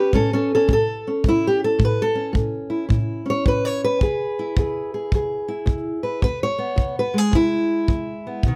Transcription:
0.00 0.13 C#4 soft
0.00 0.14 G4 medium
0.00 0.15 B4 medium
0.13 0.66 A2 medium
0.13 0.32 C#4 medium
0.13 0.33 A4 medium
0.13 kick medium
0.33 0.52 C#4 medium
0.33 0.52 A4 medium
0.55 0.72 C#4 medium
0.55 0.71 A4 medium
0.68 1.20 A2 medium
0.68 kick medium
0.73 1.07 A4 loud
1.07 1.79 C#4 soft
1.24 1.77 A2 medium
1.24 kick medium
1.28 1.45 E4 loud
1.47 1.64 G4 medium
1.64 1.82 A4 loud
1.79 2.31 A2 medium
1.79 kick medium
1.85 2.01 B4 medium
2.02 2.31 A4 loud
2.15 3.24 C#4 soft
2.33 2.86 A2 medium
2.33 kick medium
2.70 2.88 E4 medium
2.89 3.41 A2 medium
2.89 3.30 E4 soft
2.89 kick medium
3.26 3.99 C#4 soft
3.30 3.48 C#5 loud
3.45 3.97 A2 medium
3.45 3.65 B4 medium
3.45 kick medium
3.65 3.83 C#5 medium
3.84 5.50 B4 loud
4.01 4.54 E2 medium
4.01 4.59 G#4 medium
4.01 kick medium
4.39 5.47 E4 medium
4.57 5.09 E2 medium
4.57 4.94 G#4 soft
4.57 kick medium
4.94 5.15 G#4 soft
5.12 5.65 E2 medium
5.12 6.22 G#4 soft
5.12 kick medium
5.48 6.21 E4 medium
5.66 6.18 E2 medium
5.66 kick medium
6.03 6.23 B4 medium
6.22 6.74 E2 medium
6.22 6.42 B4 loud
6.22 kick medium
6.43 6.97 C#5 loud
6.58 7.18 B3 medium
6.76 7.28 E2 medium
6.76 kick medium
6.99 7.16 B4 loud
7.14 8.41 G#3 soft
7.18 7.35 G#4 medium
7.31 7.84 E2 medium
7.31 8.45 E4 loud
7.31 kick medium
7.88 8.40 E2 medium
7.88 kick medium
8.27 8.56 B3 soft
8.43 8.56 B2 medium
8.43 kick medium
8.48 8.56 D#3 medium

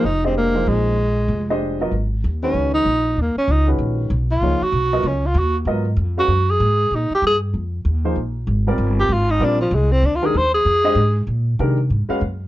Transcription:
0.04 0.64 F1 medium
0.04 0.24 D#4 medium
0.24 0.53 G#3 medium
0.24 0.36 C4 medium
0.24 0.53 D4 medium
0.24 0.53 G4 medium
0.24 0.54 C5 medium
0.24 0.54 D#5 medium
0.37 0.69 A#3 medium
0.54 0.96 F3 medium
0.54 0.96 A#3 soft
0.54 0.96 D#4 soft
0.54 0.96 G#4 medium
0.54 0.96 C5 medium
0.67 1.26 A#1 medium
0.67 1.61 G#3 medium
1.28 1.88 F1 medium
1.50 1.79 G#3 medium
1.50 1.79 D4 medium
1.50 1.79 G4 medium
1.50 1.79 C5 medium
1.50 1.79 D#5 medium
1.81 1.91 F#3 medium
1.81 1.92 B3 medium
1.81 1.92 F4 medium
1.81 1.92 A#4 medium
1.81 1.92 D#5 medium
1.91 2.22 G#1 medium
2.24 2.53 D#2 medium
2.43 2.84 D#3 medium
2.43 2.84 G#3 medium
2.43 2.84 C#4 soft
2.43 2.72 C#4 medium
2.43 2.84 F#4 medium
2.43 2.84 B4 medium
2.54 2.84 C#2 medium
2.74 3.22 D#4 medium
2.85 3.16 A#1 medium
3.17 3.35 D#2 medium
3.17 3.37 A#3 medium
3.36 3.53 C#4 medium
3.36 muted upright bass stroke soft
3.48 3.78 C#2 medium
3.48 3.69 D#4 medium
3.67 4.08 D#3 medium
3.67 4.08 G#3 medium
3.67 4.09 C#4 medium
3.67 4.09 F#4 medium
3.67 4.09 B4 medium
3.79 4.09 A#1 medium
4.10 4.41 B1 medium
4.31 4.65 F4 medium
4.41 4.60 C#2 medium
4.41 4.60 F3 medium
4.41 4.59 A#3 medium
4.41 4.60 D#4 medium
4.41 4.60 G#4 soft
4.41 4.60 C#5 medium
4.61 5.09 F#4 loud
4.61 muted upright bass stroke soft
4.72 5.03 B1 medium
4.93 5.03 F#3 medium
4.93 5.04 B3 medium
4.93 5.03 F4 medium
4.93 5.04 A#4 medium
4.93 5.04 D#5 medium
5.03 5.34 C#2 medium
5.07 5.28 C#4 medium
5.26 5.40 F4 medium
5.34 5.65 D#2 medium
5.39 5.56 F#4 medium
5.65 5.96 G#2 medium
5.65 5.84 F#3 medium
5.65 5.84 B3 medium
5.65 5.84 F4 medium
5.65 5.84 A#4 medium
5.65 5.84 D#5 medium
5.97 6.27 F2 medium
6.17 6.28 G#3 medium
6.17 6.28 C#4 medium
6.17 6.28 F#4 medium
6.17 6.52 F#4 medium
6.17 6.28 B4 medium
6.17 6.29 F5 medium
6.28 6.59 F#2 medium
6.50 6.97 G#4 medium
6.60 6.90 G#2 medium
6.91 7.09 A#2 medium
6.95 7.12 D#4 medium
7.10 muted upright bass stroke soft
7.15 7.24 G4 medium
7.22 7.53 G2 medium
7.27 7.37 G#4 medium
7.54 7.84 F2 medium
7.85 8.15 D#2 medium
8.04 8.15 F3 medium
8.04 8.16 A#3 medium
8.04 8.15 D#4 medium
8.04 8.15 G#4 medium
8.04 8.16 C5 medium
8.16 8.46 A#1 medium
8.47 8.77 G#1 medium
8.67 9.08 G3 medium
8.67 9.08 C4 medium
8.67 9.08 F4 medium
8.67 9.08 A#4 medium
8.67 9.08 D5 medium
8.78 9.08 G1 medium
8.99 9.15 G4 medium
9.09 9.39 G#1 medium
9.13 9.32 F4 medium
9.31 9.46 D#4 medium
9.40 9.70 A#1 medium
9.40 9.57 G3 medium
9.40 9.58 C4 medium
9.40 9.58 F4 medium
9.40 9.58 A#4 medium
9.40 9.58 D5 medium
9.44 9.60 D4 medium
9.61 9.76 F3 medium
9.71 10.02 C2 medium
9.71 9.93 G#3 medium
9.92 10.07 C4 medium
10.02 10.33 D2 medium
10.02 10.17 D4 medium
10.16 10.27 F4 medium
10.22 10.33 D#3 medium
10.22 10.33 G#3 medium
10.22 10.33 D4 medium
10.22 10.33 G4 medium
10.22 10.33 A#4 medium
10.26 10.38 G#4 medium
10.34 10.64 D#2 medium
10.34 10.54 C5 loud
10.54 11.24 G#4 medium
10.65 10.95 F2 medium
10.84 10.95 G#3 medium
10.84 10.95 D4 medium
10.84 10.95 G4 medium
10.84 10.95 C5 medium
10.84 10.96 D#5 medium
10.95 11.26 G#2 medium
11.27 11.57 A#2 medium
11.59 11.89 C3 medium
11.59 11.76 D#3 medium
11.59 11.77 G#3 medium
11.59 11.77 D4 medium
11.59 11.77 G4 medium
11.59 11.77 A#4 medium
11.90 12.08 G#2 medium
12.09 12.20 G#3 medium
12.09 12.20 C#4 medium
12.09 12.20 F#4 medium
12.09 12.20 B4 medium
12.09 12.20 F5 medium
12.09 muted upright bass stroke soft
12.21 12.48 F#2 medium

